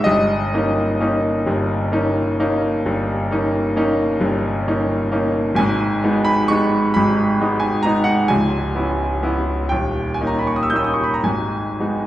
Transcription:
0.04 0.52 G1 medium
0.04 0.52 G2 medium
0.04 5.10 D#5 medium
0.54 0.96 A#3 soft
0.54 0.96 C#4 soft
0.54 0.97 D#4 medium
1.00 1.42 A#3 soft
1.00 1.42 C#4 medium
1.00 1.42 D#4 medium
1.46 1.91 G1 medium
1.46 1.91 G2 medium
1.92 2.35 A#3 soft
1.92 2.35 C#4 soft
1.92 2.35 D#4 medium
2.40 2.82 A#3 medium
2.40 2.82 C#4 soft
2.40 2.82 D#4 medium
2.86 3.30 G1 medium
2.86 3.30 G2 medium
3.31 3.72 A#3 medium
3.31 3.72 C#4 medium
3.31 3.72 D#4 medium
3.76 4.16 A#3 medium
3.76 4.17 C#4 medium
3.76 4.17 D#4 medium
4.21 4.64 G1 medium
4.21 4.64 G2 medium
4.67 5.08 A#3 soft
4.67 5.09 C#4 soft
4.67 5.09 D#4 medium
5.12 5.54 A#3 medium
5.12 5.54 C#4 medium
5.12 5.54 D#4 medium
5.55 6.01 G#1 medium
5.55 6.03 G#2 medium
5.55 6.26 G#5 medium
6.03 6.46 G#3 soft
6.03 6.46 B3 soft
6.03 6.46 D#4 medium
6.25 6.49 B5 medium
6.48 6.91 G#3 soft
6.48 6.91 B3 medium
6.48 6.91 D#4 medium
6.48 6.94 C#6 medium
6.94 7.38 G#1 medium
6.94 7.39 G#2 medium
6.94 7.61 B5 medium
7.40 7.80 G#3 soft
7.40 7.80 B3 soft
7.40 7.80 D#4 soft
7.60 7.82 G#5 medium
7.83 8.25 G#3 soft
7.83 8.25 B3 soft
7.83 8.25 D#4 medium
7.83 8.05 A#5 medium
8.04 8.27 F#5 medium
8.28 8.74 C#1 medium
8.28 8.74 C#2 medium
8.28 9.70 G#5 medium
8.75 9.17 B3 soft
8.75 9.18 C#4 soft
8.75 9.18 E4 soft
9.22 9.67 B3 soft
9.22 9.67 C#4 soft
9.22 9.67 E4 medium
9.69 10.21 D#1 soft
9.69 10.21 D#2 medium
9.69 10.16 G5 medium
10.14 10.29 G#5 medium
10.21 10.69 A#3 soft
10.21 10.69 C#4 soft
10.21 10.69 D#4 soft
10.27 10.40 A#5 soft
10.39 10.50 B5 soft
10.47 10.57 C#6 medium
10.56 10.65 D#6 medium
10.63 10.71 E6 medium
10.70 11.20 A#3 soft
10.70 11.21 C#4 soft
10.70 11.21 D#4 soft
10.70 10.79 G6 medium
10.76 10.86 E6 medium
10.84 10.94 D#6 medium
10.93 11.04 C#6 soft
11.04 11.14 B5 soft
11.14 11.25 A#5 soft
11.23 11.76 G#1 soft
11.23 11.78 G#2 soft
11.23 12.07 G#5 medium
11.80 12.07 G#3 soft
11.80 12.07 B3 soft
11.80 12.07 D#4 soft

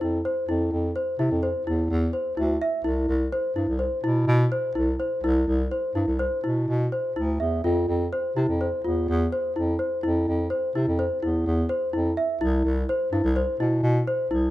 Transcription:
0.01 0.21 F2 medium
0.01 0.18 E4 medium
0.25 0.42 C5 medium
0.48 0.68 F2 medium
0.48 0.83 E4 medium
0.72 0.92 F2 medium
0.96 1.13 C5 medium
1.19 1.29 C3 medium
1.19 1.37 E4 medium
1.31 1.51 F2 medium
1.43 1.60 C5 medium
1.66 1.86 E2 medium
1.66 2.02 E4 medium
1.90 2.10 E2 medium
2.13 2.31 C5 medium
2.37 2.57 D2 medium
2.37 2.55 E4 medium
2.62 2.79 E5 medium
2.84 3.05 C2 medium
2.84 3.20 E4 medium
3.08 3.29 C2 medium
3.33 3.50 C5 medium
3.56 3.66 G2 medium
3.56 3.74 E4 medium
3.68 3.88 C2 medium
3.79 3.97 C5 medium
4.03 4.24 B2 medium
4.03 4.39 E4 medium
4.27 4.48 B2 medium
4.52 4.69 C5 medium
4.75 4.95 C2 medium
4.75 4.93 E4 medium
5.00 5.17 C5 medium
5.23 5.43 C2 medium
5.23 5.59 E4 medium
5.48 5.68 C2 medium
5.71 5.89 C5 medium
5.95 6.05 G2 medium
5.95 6.13 E4 medium
6.07 6.28 C2 medium
6.19 6.37 C5 medium
6.43 6.64 B2 medium
6.43 6.79 E4 medium
6.68 6.88 B2 medium
6.92 7.10 C5 medium
7.16 7.38 D2 medium
7.16 7.34 E4 medium
7.40 7.62 E2 medium
7.40 7.58 E5 medium
7.64 7.84 F2 medium
7.64 8.00 F4 medium
7.88 8.09 F2 medium
8.13 8.30 C5 medium
8.36 8.47 C3 medium
8.36 8.54 E4 medium
8.48 8.69 F2 medium
8.61 8.78 C5 medium
8.84 9.05 E2 medium
8.84 9.20 F4 medium
9.08 9.29 E2 medium
9.33 9.50 C5 medium
9.56 9.76 F2 medium
9.56 9.74 E4 medium
9.79 9.97 C5 medium
10.03 10.24 F2 medium
10.03 10.39 E4 medium
10.28 10.48 F2 medium
10.50 10.68 C5 medium
10.75 10.85 C3 medium
10.75 10.93 E4 medium
10.87 11.07 F2 medium
10.99 11.16 C5 medium
11.22 11.42 E2 medium
11.22 11.57 E4 medium
11.46 11.66 E2 medium
11.69 11.87 C5 medium
11.93 12.14 F2 medium
11.93 12.11 E4 medium
12.17 12.35 E5 medium
12.41 12.61 C2 medium
12.41 12.76 E4 medium
12.65 12.85 C2 medium
12.89 13.06 C5 medium
13.12 13.22 G2 medium
13.12 13.30 E4 medium
13.24 13.44 C2 medium
13.36 13.53 C5 medium
13.59 13.79 B2 medium
13.59 13.95 E4 medium
13.83 14.03 B2 medium
14.07 14.25 C5 medium
14.30 14.51 C2 medium
14.30 14.48 E4 medium

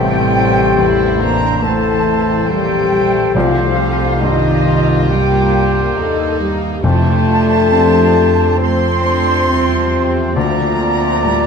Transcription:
0.00 2.44 A1 medium
0.00 2.48 A1 medium
0.00 3.35 C3 medium
0.00 0.76 E3 medium
0.00 1.17 G3 medium
0.00 0.74 A3 medium
0.00 0.76 C4 medium
0.00 1.20 G4 medium
0.00 1.59 A4 medium
0.00 1.59 C5 medium
0.00 0.89 G5 loud
0.19 1.92 E3 medium
0.48 2.20 C4 medium
0.76 2.49 E2 medium
0.76 1.61 E3 medium
0.76 1.61 C4 medium
0.76 1.20 E4 medium
0.76 3.38 G4 medium
1.05 2.77 C5 medium
1.19 1.62 A#3 medium
1.19 1.63 A#3 medium
1.19 1.62 D4 medium
1.19 1.62 A#5 loud
1.34 2.49 A4 medium
1.62 2.04 E3 medium
1.62 2.48 A3 medium
1.62 3.34 C4 medium
1.62 2.47 C4 medium
1.62 2.49 A4 medium
1.62 2.48 A4 medium
1.62 2.47 C5 medium
1.62 2.48 A5 medium
1.93 3.39 E3 medium
2.05 2.48 E3 medium
2.21 3.92 C4 medium
2.48 3.33 A#1 medium
2.48 3.34 G3 medium
2.48 3.35 G3 medium
2.48 2.92 A#3 medium
2.48 3.35 G4 medium
2.48 3.06 A4 medium
2.48 3.38 A4 medium
2.48 3.33 C5 medium
2.48 3.34 G5 loud
2.79 4.50 C5 medium
2.92 3.35 A3 medium
3.07 3.39 A4 medium
3.35 5.92 C2 medium
3.35 6.80 C2 medium
3.35 4.61 C3 medium
3.35 5.08 C3 medium
3.35 4.21 F3 medium
3.35 4.20 A3 medium
3.35 3.77 C4 medium
3.35 4.20 C4 medium
3.35 4.20 F4 medium
3.35 4.22 G4 medium
3.35 4.20 C5 medium
3.35 4.20 F5 loud
3.64 5.37 G3 medium
3.79 5.96 F4 medium
3.93 5.66 C4 medium
4.21 6.84 G2 soft
4.21 5.08 D#3 medium
4.21 5.09 G3 medium
4.21 6.80 A#3 medium
4.21 5.09 D#4 medium
4.21 5.07 G4 medium
4.21 4.79 A#4 medium
4.21 5.07 C5 medium
4.21 5.09 D#5 loud
4.52 6.24 C5 medium
4.80 5.94 A#4 medium
5.09 6.82 C3 medium
5.09 5.96 G3 medium
5.09 5.97 A#3 medium
5.09 6.53 G4 medium
5.09 5.96 G4 medium
5.09 6.53 C5 medium
5.09 5.94 G5 medium
5.67 9.57 C4 medium
5.96 6.81 D#2 medium
5.96 6.84 D#4 medium
5.96 6.40 A4 medium
5.96 6.53 A#4 medium
6.25 7.70 C5 medium
6.41 6.83 G3 medium
6.54 6.87 A#4 medium
6.83 8.11 F2 medium
6.83 9.47 F2 medium
6.83 9.43 F2 medium
6.83 10.73 C3 medium
6.83 7.27 F3 medium
6.83 8.55 A3 medium
6.83 7.71 A3 medium
6.83 8.56 D4 medium
6.83 8.56 F4 medium
6.83 8.56 A4 loud
6.83 8.55 C5 medium
6.83 8.56 A5 loud
7.28 7.70 F3 medium
7.42 9.17 F4 medium
7.72 9.47 C3 medium
7.72 8.15 F3 medium
7.72 8.59 C4 medium
8.01 9.76 F5 medium
8.17 9.48 A3 medium
8.30 9.46 C5 medium
8.59 9.03 C4 medium
8.59 10.35 C4 medium
8.59 9.46 C4 medium
8.59 10.32 F4 medium
8.59 10.32 C5 medium
8.59 10.36 C5 medium
8.59 10.12 C6 loud
9.04 9.47 D4 medium
9.18 10.93 F4 medium
9.47 10.35 E2 medium
9.47 10.34 G3 medium
9.47 10.35 A3 medium
9.47 11.23 C4 medium
9.77 11.47 F5 medium
10.07 10.39 C5 medium
10.35 11.47 D2 medium
10.35 11.47 D3 medium
10.35 10.79 F3 medium
10.35 11.47 A3 medium
10.35 11.47 A#3 medium
10.35 11.47 F4 medium
10.35 11.47 D5 medium
10.35 11.47 A#5 loud
10.80 11.23 F3 medium
10.94 11.47 F4 medium
11.24 11.47 A2 soft
11.24 11.47 G3 medium
11.24 11.47 D4 medium

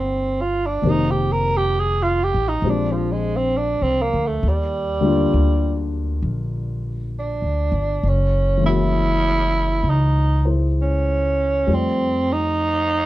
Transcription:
0.00 0.79 G1 medium
0.00 0.80 D#3 soft
0.00 0.83 G3 soft
0.00 0.82 A#3 soft
0.00 0.43 C4 medium
0.00 0.83 C4 soft
0.00 0.83 D4 soft
0.00 0.83 D#4 soft
0.00 0.84 F4 medium
0.00 0.84 G4 soft
0.41 0.67 F4 medium
0.66 0.91 D4 medium
0.82 2.30 F1 medium
0.82 2.63 D#3 soft
0.82 2.63 G#3 soft
0.82 2.63 A#3 soft
0.82 2.63 C4 soft
0.87 1.12 D#4 medium
0.87 2.64 G4 soft
1.11 1.34 G4 medium
1.32 1.58 A#4 loud
1.57 1.81 G4 medium
1.80 2.04 G#4 medium
2.03 2.25 F4 medium
2.24 2.50 G4 medium
2.34 2.61 A1 medium
2.48 2.71 D#4 medium
2.62 3.78 A#1 medium
2.62 4.43 F3 soft
2.62 4.43 G#3 soft
2.62 4.44 C4 soft
2.62 4.44 D4 soft
2.62 4.44 G4 soft
2.69 2.93 D4 medium
2.91 3.13 F3 medium
3.12 3.38 G#3 medium
3.36 3.58 C4 medium
3.57 3.84 D4 medium
3.81 4.10 C2 soft
3.81 4.03 C4 medium
4.02 4.28 A#3 medium
4.13 4.41 D2 medium
4.27 4.50 A3 medium
4.43 5.29 D#2 medium
4.49 5.96 G3 medium
5.01 8.02 D3 medium
5.01 8.02 G3 medium
5.01 8.03 A#3 medium
5.01 8.04 D4 medium
5.05 8.04 F4 medium
5.34 6.19 D2 medium
6.22 7.38 A#1 medium
7.19 8.10 D4 medium
7.42 7.70 D2 medium
7.72 8.00 G1 medium
8.03 9.80 F#1 medium
8.09 8.65 C#4 medium
8.57 11.64 E3 medium
8.57 10.43 G#3 soft
8.62 11.67 A#3 soft
8.62 11.68 C#4 soft
8.62 9.92 E4 loud
8.68 11.69 F#4 soft
9.84 11.63 C#2 medium
9.90 10.48 D#4 medium
10.45 11.67 G#3 soft
10.45 11.68 E4 soft
10.45 11.67 C5 soft
10.82 11.75 C#4 medium
11.67 13.06 F2 medium
11.67 13.06 G3 soft
11.67 13.06 A3 soft
11.67 13.06 C4 soft
11.67 13.06 F4 soft
11.67 13.06 D5 soft
11.73 12.34 C4 medium
12.32 13.06 D#4 loud

